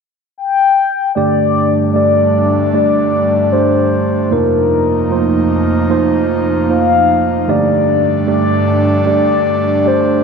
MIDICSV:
0, 0, Header, 1, 4, 480
1, 0, Start_track
1, 0, Key_signature, -2, "minor"
1, 0, Tempo, 789474
1, 707, Time_signature, 4, 2, 24, 8
1, 6224, End_track
2, 0, Start_track
2, 0, Title_t, "Soft synth lead"
2, 0, Program_c, 0, 80
2, 229, Note_on_c, 0, 79, 88
2, 684, Note_off_c, 0, 79, 0
2, 701, Note_on_c, 0, 74, 97
2, 1159, Note_off_c, 0, 74, 0
2, 1175, Note_on_c, 0, 74, 83
2, 1636, Note_off_c, 0, 74, 0
2, 1661, Note_on_c, 0, 74, 83
2, 2142, Note_on_c, 0, 72, 78
2, 2151, Note_off_c, 0, 74, 0
2, 2629, Note_on_c, 0, 70, 78
2, 2638, Note_off_c, 0, 72, 0
2, 3348, Note_off_c, 0, 70, 0
2, 4070, Note_on_c, 0, 77, 91
2, 4560, Note_on_c, 0, 74, 94
2, 4570, Note_off_c, 0, 77, 0
2, 5034, Note_off_c, 0, 74, 0
2, 5045, Note_on_c, 0, 74, 86
2, 5491, Note_off_c, 0, 74, 0
2, 5523, Note_on_c, 0, 74, 90
2, 6003, Note_on_c, 0, 72, 81
2, 6012, Note_off_c, 0, 74, 0
2, 6224, Note_off_c, 0, 72, 0
2, 6224, End_track
3, 0, Start_track
3, 0, Title_t, "Tine electric piano"
3, 0, Program_c, 1, 4
3, 705, Note_on_c, 1, 57, 57
3, 709, Note_on_c, 1, 50, 41
3, 709, Note_on_c, 1, 62, 49
3, 709, Note_on_c, 1, 67, 54
3, 710, Note_on_c, 1, 43, 38
3, 714, Note_on_c, 1, 74, 65
3, 805, Control_c, 1, 64, 127
3, 1162, Note_off_c, 1, 57, 0
3, 1164, Note_off_c, 1, 62, 0
3, 1164, Note_off_c, 1, 67, 0
3, 1166, Note_off_c, 1, 74, 0
3, 1181, Note_on_c, 1, 57, 46
3, 1185, Note_on_c, 1, 62, 41
3, 1189, Note_on_c, 1, 67, 39
3, 1191, Note_on_c, 1, 74, 52
3, 1640, Note_off_c, 1, 57, 0
3, 1642, Note_off_c, 1, 62, 0
3, 1644, Note_off_c, 1, 67, 0
3, 1645, Note_off_c, 1, 74, 0
3, 1664, Note_on_c, 1, 57, 49
3, 1667, Note_on_c, 1, 62, 47
3, 1669, Note_on_c, 1, 67, 48
3, 1671, Note_on_c, 1, 74, 58
3, 2121, Note_off_c, 1, 57, 0
3, 2123, Note_off_c, 1, 62, 0
3, 2124, Note_off_c, 1, 67, 0
3, 2125, Note_off_c, 1, 74, 0
3, 2147, Note_on_c, 1, 57, 46
3, 2148, Note_on_c, 1, 62, 41
3, 2151, Note_on_c, 1, 67, 41
3, 2153, Note_on_c, 1, 74, 50
3, 2603, Note_off_c, 1, 57, 0
3, 2604, Note_off_c, 1, 43, 0
3, 2604, Note_off_c, 1, 50, 0
3, 2604, Note_off_c, 1, 62, 0
3, 2605, Note_off_c, 1, 67, 0
3, 2606, Note_off_c, 1, 74, 0
3, 2619, Note_on_c, 1, 58, 60
3, 2625, Note_on_c, 1, 41, 40
3, 2625, Note_on_c, 1, 48, 39
3, 2625, Note_on_c, 1, 63, 58
3, 2628, Note_on_c, 1, 65, 57
3, 2629, Note_on_c, 1, 72, 68
3, 2633, Control_c, 1, 64, 0
3, 2755, Control_c, 1, 64, 127
3, 3079, Note_off_c, 1, 58, 0
3, 3082, Note_off_c, 1, 63, 0
3, 3083, Note_off_c, 1, 65, 0
3, 3084, Note_off_c, 1, 72, 0
3, 3102, Note_on_c, 1, 57, 40
3, 3105, Note_on_c, 1, 63, 42
3, 3107, Note_on_c, 1, 65, 44
3, 3112, Note_on_c, 1, 72, 50
3, 3142, Note_on_c, 1, 58, 49
3, 3144, Note_off_c, 1, 57, 0
3, 3562, Note_off_c, 1, 63, 0
3, 3563, Note_off_c, 1, 65, 0
3, 3565, Note_off_c, 1, 72, 0
3, 3578, Note_off_c, 1, 58, 0
3, 3585, Note_on_c, 1, 58, 62
3, 3587, Note_on_c, 1, 63, 58
3, 3589, Note_on_c, 1, 65, 57
3, 3593, Note_on_c, 1, 72, 71
3, 4042, Note_off_c, 1, 58, 0
3, 4043, Note_off_c, 1, 63, 0
3, 4044, Note_off_c, 1, 65, 0
3, 4046, Note_off_c, 1, 72, 0
3, 4068, Note_on_c, 1, 58, 45
3, 4070, Note_on_c, 1, 63, 41
3, 4074, Note_on_c, 1, 65, 44
3, 4076, Note_on_c, 1, 72, 51
3, 4521, Note_off_c, 1, 48, 0
3, 4522, Note_off_c, 1, 41, 0
3, 4523, Note_off_c, 1, 58, 0
3, 4525, Note_off_c, 1, 63, 0
3, 4526, Note_off_c, 1, 65, 0
3, 4527, Note_off_c, 1, 72, 0
3, 4548, Note_on_c, 1, 57, 59
3, 4551, Note_on_c, 1, 62, 60
3, 4553, Note_on_c, 1, 43, 41
3, 4553, Note_on_c, 1, 50, 43
3, 4554, Control_c, 1, 64, 0
3, 4554, Note_on_c, 1, 67, 58
3, 4557, Note_on_c, 1, 74, 70
3, 4647, Control_c, 1, 64, 127
3, 5003, Note_off_c, 1, 57, 0
3, 5005, Note_off_c, 1, 62, 0
3, 5006, Note_off_c, 1, 67, 0
3, 5008, Note_off_c, 1, 74, 0
3, 5026, Note_on_c, 1, 57, 49
3, 5028, Note_on_c, 1, 62, 45
3, 5032, Note_on_c, 1, 67, 45
3, 5035, Note_on_c, 1, 74, 54
3, 5482, Note_off_c, 1, 57, 0
3, 5483, Note_off_c, 1, 62, 0
3, 5486, Note_off_c, 1, 67, 0
3, 5487, Note_off_c, 1, 74, 0
3, 5506, Note_on_c, 1, 57, 52
3, 5509, Note_on_c, 1, 62, 49
3, 5512, Note_on_c, 1, 67, 51
3, 5516, Note_on_c, 1, 74, 59
3, 5963, Note_off_c, 1, 57, 0
3, 5964, Note_off_c, 1, 62, 0
3, 5965, Note_off_c, 1, 67, 0
3, 5967, Note_off_c, 1, 74, 0
3, 5986, Note_on_c, 1, 57, 48
3, 5991, Note_on_c, 1, 62, 43
3, 5992, Note_on_c, 1, 67, 44
3, 5994, Note_on_c, 1, 74, 54
3, 6224, Note_off_c, 1, 43, 0
3, 6224, Note_off_c, 1, 50, 0
3, 6224, Note_off_c, 1, 57, 0
3, 6224, Note_off_c, 1, 62, 0
3, 6224, Note_off_c, 1, 67, 0
3, 6224, Note_off_c, 1, 74, 0
3, 6224, End_track
4, 0, Start_track
4, 0, Title_t, "Analog synth pad"
4, 0, Program_c, 2, 89
4, 708, Note_on_c, 2, 43, 63
4, 708, Note_on_c, 2, 57, 57
4, 711, Note_on_c, 2, 62, 68
4, 713, Note_on_c, 2, 55, 57
4, 2608, Note_off_c, 2, 43, 0
4, 2608, Note_off_c, 2, 57, 0
4, 2610, Note_off_c, 2, 62, 0
4, 2611, Note_off_c, 2, 55, 0
4, 2625, Note_on_c, 2, 58, 54
4, 2627, Note_on_c, 2, 53, 57
4, 2628, Note_on_c, 2, 41, 65
4, 2629, Note_on_c, 2, 63, 64
4, 4527, Note_off_c, 2, 58, 0
4, 4528, Note_off_c, 2, 41, 0
4, 4528, Note_off_c, 2, 53, 0
4, 4529, Note_off_c, 2, 63, 0
4, 4552, Note_on_c, 2, 55, 60
4, 4553, Note_on_c, 2, 62, 66
4, 4554, Note_on_c, 2, 43, 60
4, 4554, Note_on_c, 2, 57, 57
4, 6224, Note_off_c, 2, 43, 0
4, 6224, Note_off_c, 2, 55, 0
4, 6224, Note_off_c, 2, 57, 0
4, 6224, Note_off_c, 2, 62, 0
4, 6224, End_track
0, 0, End_of_file